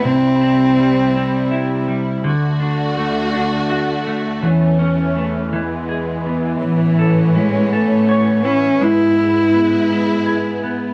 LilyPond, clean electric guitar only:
\new Staff \with { instrumentName = "Clean electric guitar" } { \time 6/8 \key e \mixolydian \tempo 4. = 55 c8 c'8 g8 c'8 e'8 g8 | d8 d'8 a8 d'8 fis'8 a8 | e8 cis'8 a8 e8 gis'8 b8 | r8 a'8 e'8 a'8 cis''8 e'8 |
gis8 e'8 b8 e'8 gis'8 b8 | }